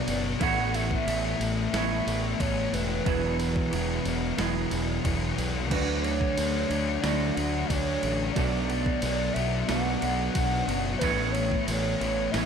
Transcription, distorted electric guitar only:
0.00 0.38 B2 medium
0.07 0.40 F#3 medium
0.07 0.42 B3 medium
0.39 1.05 A2 loud
0.39 0.76 E3 loud
0.39 0.72 A3 loud
0.73 1.07 E3 medium
0.73 1.08 A3 medium
1.06 1.72 A2 medium
1.06 1.42 E3 medium
1.06 1.38 A3 medium
1.39 1.73 E3 medium
1.39 1.75 A3 medium
1.73 2.38 A2 loud
1.73 2.07 E3 loud
1.73 2.04 A3 loud
2.05 2.40 E3 medium
2.05 2.41 A3 medium
2.39 3.03 A2 medium
2.39 2.74 E3 medium
2.39 2.70 A3 medium
2.72 3.05 E3 medium
2.72 3.03 A3 medium
3.05 3.71 E2 loud
3.05 3.42 B2 loud
3.05 3.38 E3 loud
3.39 3.72 B2 medium
3.39 3.74 E3 medium
3.72 4.37 E2 medium
3.72 4.07 B2 medium
3.72 4.04 E3 medium
4.05 4.39 B2 medium
4.05 4.40 E3 medium
4.38 5.03 E2 medium
4.38 4.74 B2 loud
4.38 4.71 E3 loud
4.72 5.04 B2 medium
4.72 5.06 E3 medium
5.04 5.68 E2 medium
5.04 5.39 B2 medium
5.04 5.35 E3 medium
5.36 5.70 B2 medium
5.36 5.68 E3 medium
5.70 6.35 D3 loud
5.70 6.07 A3 loud
5.70 6.04 D4 loud
6.04 6.38 A3 medium
6.04 6.39 D4 medium
6.37 7.01 D3 medium
6.37 6.73 A3 medium
6.37 6.69 D4 medium
6.70 7.04 A3 medium
6.70 7.04 D4 medium
7.02 7.68 D3 loud
7.02 7.40 A3 loud
7.02 7.36 D4 loud
7.37 7.71 A3 medium
7.37 7.72 D4 medium
7.70 8.34 D3 medium
7.70 8.06 A3 medium
7.70 8.02 D4 loud
8.03 8.36 A3 medium
8.03 8.34 D4 medium
8.35 9.01 B2 loud
8.35 8.71 F#3 medium
8.35 8.69 B3 loud
8.69 9.02 F#3 medium
8.69 9.05 B3 medium
9.02 9.67 B2 medium
9.02 9.38 F#3 medium
9.02 9.35 B3 medium
9.36 9.69 F#3 medium
9.36 9.71 B3 medium
9.69 10.34 B2 loud
9.69 10.03 F#3 loud
9.69 10.00 B3 loud
10.01 10.35 F#3 medium
10.01 10.38 B3 medium
10.35 10.99 B2 medium
10.35 10.70 F#3 medium
10.35 10.68 B3 medium
10.68 11.01 F#3 medium
10.68 11.04 B3 medium
11.01 11.67 A2 loud
11.01 11.37 E3 loud
11.01 11.34 A3 loud
11.35 11.68 E3 medium
11.35 11.70 A3 medium
11.68 12.33 A2 medium
11.68 12.02 E3 medium
11.68 11.99 A3 medium
12.00 12.35 E3 medium
12.00 12.37 A3 medium
12.34 12.46 A2 loud
12.34 12.46 E3 loud
12.34 12.46 A3 loud

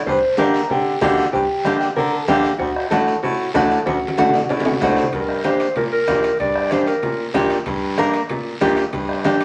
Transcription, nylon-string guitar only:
0.37 0.60 A#3 medium
0.37 0.60 D4 medium
0.37 0.60 G4 medium
1.01 1.24 A#3 medium
1.01 1.24 D4 medium
1.01 1.24 G4 medium
1.65 1.87 A#3 medium
1.65 1.87 D4 medium
1.65 1.88 G4 medium
2.28 2.50 A#3 medium
2.28 2.51 D4 medium
2.28 2.51 G4 loud
2.91 3.14 A3 medium
2.91 3.14 D4 medium
2.91 3.14 F#4 medium
3.55 3.77 A3 medium
3.55 3.77 D4 medium
3.55 3.77 F#4 loud
4.18 4.40 A3 medium
4.18 4.40 D4 medium
4.18 4.40 F#4 medium
4.81 5.04 A3 medium
4.81 5.04 D4 medium
4.81 5.04 F#4 medium
5.44 5.66 A#3 medium
5.44 5.66 D4 medium
5.44 5.67 G4 medium
6.07 6.30 A#3 medium
6.07 6.30 D4 medium
6.07 6.30 G4 medium
6.71 6.93 A#3 medium
6.71 6.94 D4 medium
6.71 6.94 G4 medium
7.34 7.57 A#3 medium
7.34 7.57 D4 medium
7.34 7.57 G4 loud
7.98 8.20 A#3 medium
7.98 8.20 D4 medium
7.98 8.21 A#4 medium
8.61 8.83 A#3 medium
8.61 8.84 D4 medium
8.61 8.84 G4 medium
9.24 9.45 A#3 medium
9.24 9.45 D4 medium
9.24 9.45 G4 medium

